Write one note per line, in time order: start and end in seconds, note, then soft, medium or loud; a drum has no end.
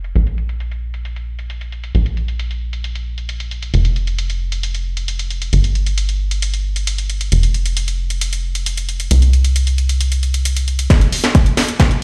0.00 0.13 F1 medium
0.04 closed hi-hat soft
0.16 1.92 A#1 medium
0.16 closed hi-hat medium
0.27 closed hi-hat soft
0.38 closed hi-hat soft
0.49 closed hi-hat soft
0.60 closed hi-hat medium
0.71 closed hi-hat soft
0.94 closed hi-hat soft
1.05 closed hi-hat medium
1.16 closed hi-hat soft
1.39 closed hi-hat soft
1.50 closed hi-hat medium
1.61 closed hi-hat soft
1.72 closed hi-hat soft
1.84 closed hi-hat soft
1.95 3.72 A#1 medium
1.95 closed hi-hat medium
2.06 closed hi-hat soft
2.17 closed hi-hat soft
2.28 closed hi-hat soft
2.39 closed hi-hat medium
2.51 closed hi-hat soft
2.73 closed hi-hat soft
2.84 closed hi-hat medium
2.95 closed hi-hat soft
3.18 closed hi-hat soft
3.29 closed hi-hat medium
3.40 closed hi-hat soft
3.51 closed hi-hat soft
3.63 closed hi-hat soft
3.74 5.51 F1 medium
3.74 closed hi-hat medium
3.85 closed hi-hat soft
3.96 closed hi-hat soft
4.07 closed hi-hat soft
4.19 closed hi-hat medium
4.30 closed hi-hat soft
4.52 closed hi-hat soft
4.63 closed hi-hat medium
4.75 closed hi-hat soft
4.97 closed hi-hat soft
5.08 closed hi-hat medium
5.19 closed hi-hat soft
5.30 closed hi-hat soft
5.42 closed hi-hat soft
5.53 7.30 G1 medium
5.53 closed hi-hat medium
5.64 closed hi-hat soft
5.75 closed hi-hat soft
5.86 closed hi-hat soft
5.98 closed hi-hat medium
6.09 closed hi-hat soft
6.31 closed hi-hat medium
6.42 closed hi-hat medium
6.54 closed hi-hat soft
6.76 closed hi-hat medium
6.87 closed hi-hat medium
6.98 closed hi-hat medium
7.10 closed hi-hat soft
7.21 closed hi-hat soft
7.32 9.09 F1 medium
7.32 closed hi-hat medium
7.43 closed hi-hat medium
7.54 closed hi-hat soft
7.66 closed hi-hat medium
7.77 closed hi-hat medium
7.88 closed hi-hat medium
8.10 closed hi-hat medium
8.21 closed hi-hat medium
8.33 closed hi-hat medium
8.55 closed hi-hat medium
8.66 closed hi-hat medium
8.77 closed hi-hat medium
8.89 closed hi-hat medium
9.00 closed hi-hat medium
9.11 10.88 C2 medium
9.11 closed hi-hat medium
9.22 closed hi-hat medium
9.33 closed hi-hat soft
9.45 closed hi-hat medium
9.56 closed hi-hat medium
9.67 closed hi-hat medium
9.78 closed hi-hat soft
9.89 closed hi-hat medium
10.01 closed hi-hat medium
10.12 closed hi-hat medium
10.23 closed hi-hat soft
10.34 closed hi-hat medium
10.45 closed hi-hat medium
10.57 closed hi-hat medium
10.68 closed hi-hat medium
10.79 closed hi-hat medium
10.90 kick loud
10.90 snare soft
10.90 closed hi-hat medium
11.01 closed hi-hat medium
11.12 open hi-hat loud
11.24 snare soft
11.24 closed hi-hat medium
11.35 kick loud
11.35 closed hi-hat medium
11.46 closed hi-hat medium
11.57 snare soft
11.57 open hi-hat loud
11.68 closed hi-hat medium
11.80 kick loud
11.80 snare medium
11.80 closed hi-hat medium
11.91 closed hi-hat medium